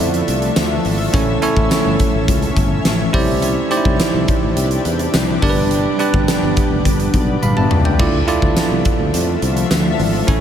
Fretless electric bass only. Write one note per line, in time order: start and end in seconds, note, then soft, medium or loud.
0.00 0.21 F2 medium
0.28 0.49 C2 loud
0.57 0.78 D2 loud
0.85 1.07 G#1 loud
1.14 1.35 A1 loud
1.57 1.67 A1 loud
1.85 1.96 G1 medium
2.14 2.25 A1 medium
2.28 2.50 C#2 loud
2.57 2.78 G1 medium
2.85 3.07 A1 medium
3.14 3.57 C2 medium
3.85 3.96 C2 medium
4.14 4.25 C2 loud
4.43 4.53 A1 medium
4.57 4.78 C2 loud
4.85 5.07 E2 medium
5.14 5.35 C2 medium
5.42 5.85 G1 medium
6.14 6.25 G1 loud
6.43 6.53 G1 medium
6.71 6.85 F1 medium
6.85 7.07 G1 medium
7.14 7.35 B1 medium
7.42 7.64 G1 medium
7.71 7.92 C#2 loud
8.00 8.21 D2 loud
8.42 8.53 D2 loud
8.71 8.82 C2 medium
8.99 9.10 D2 medium
9.14 9.35 F2 loud
9.42 9.64 C2 loud
9.71 9.92 D2 medium
9.99 10.21 G#1 medium
10.28 10.41 A1 loud